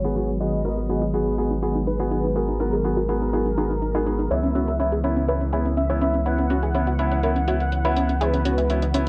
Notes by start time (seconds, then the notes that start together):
Already playing: G#1 D#3 F#3 G#3 B3 F#4 C#5
0.04 B3 F#4 G#4, closed hi-hat
0.16 G#3 B3 F#4 G#4, closed hi-hat
0.29 G#3, closed hi-hat
0.40 B3 F#4 G#4 B4 D#5, closed hi-hat
0.53 D#4, closed hi-hat
0.65 B3 D#4 F#4 A#4, closed hi-hat
0.77 G#4, closed hi-hat
0.89 B3 D#4 F#4 G#4, closed hi-hat
1.02 F#4, closed hi-hat
1.14 B3 D#4 F#4 G#4, closed hi-hat
1.26 D#4, closed hi-hat
1.38 B3 F#4 G#4 A#4, closed hi-hat
1.51 D#4, closed hi-hat
1.62 B3 F#4 G#4, closed hi-hat
1.75 D#4, closed hi-hat
1.87 D#4 B4, closed hi-hat
1.99 B3 F#4 G#4 B4, closed hi-hat
2.11 B3 D#4 F#4 G#4, closed hi-hat
2.24 D#4, closed hi-hat
2.36 B3 F#4 G#4 A#4 B4, closed hi-hat
2.48 D#4, closed hi-hat
2.60 B3 D#4 F#4 A#4, closed hi-hat
2.73 G#4, closed hi-hat
2.84 B3 D#4 F#4 G#4, closed hi-hat
2.97 F#4, closed hi-hat
3.09 B3 D#4 F#4 G#4, closed hi-hat
3.21 D#4, closed hi-hat
3.33 B3 E4 F#4 G#4, closed hi-hat
3.46 D#4, closed hi-hat
3.58 B3 D#4 F#4 G#4, closed hi-hat
3.70 D#4, closed hi-hat
3.82 D#4, closed hi-hat
3.95 B3 D#4 F#4 G#4, closed hi-hat
4.06 B3 D#4 F#4 G#4, closed hi-hat
4.19 D#4, closed hi-hat
4.31 C#2 C#3 E3 B3 C#4 E4 C#5 E5, closed hi-hat
4.43 C#4, closed hi-hat
4.55 B3 C#4 F#4, closed hi-hat
4.68 A#4, closed hi-hat
4.80 B3 C#4 E4, closed hi-hat
4.92 G#4, closed hi-hat
5.04 B3 C#4 E4, closed hi-hat
5.16 C#4, closed hi-hat
5.28 B3 C#4 E4 B4, closed hi-hat
5.41 C#4, closed hi-hat
5.53 B3 C#4 E4 G#4, closed hi-hat
5.65 C#4, closed hi-hat
5.77 C#4 E5, closed hi-hat
5.90 B3 C#4 E4 C#5, closed hi-hat
6.01 B3 C#4 E4, closed hi-hat
6.14 C#4, closed hi-hat
6.26 B3 C#4 E4 B4 F#5, closed hi-hat
6.38 C#4, closed hi-hat
6.50 B3 C#4 F#4, closed hi-hat
6.63 G#4, closed hi-hat
6.75 B3 C#4 E4, closed hi-hat
6.87 F#4, closed hi-hat
6.99 B3 C#4 E4, closed hi-hat
7.12 C#4, closed hi-hat
7.23 B3 C#4 E4 A#4, closed hi-hat
7.36 C#4, closed hi-hat
7.48 B3 C#4 E4 F#4, closed hi-hat
7.60 C#4, closed hi-hat
7.72 C#4, closed hi-hat
7.85 B3 C#4 E4 B4, closed hi-hat
7.97 B3 C#4 E4, closed hi-hat
8.09 C#4, closed hi-hat
8.21 B3 C#4 E4 F#4 G#4 B4, closed hi-hat
8.33 C#4, closed hi-hat
8.45 B3 C#4 F#4, closed hi-hat
8.58 E4, closed hi-hat
8.70 B3 C#4 E4, closed hi-hat
8.82 D#4, closed hi-hat
8.94 B3 C#4 E4, closed hi-hat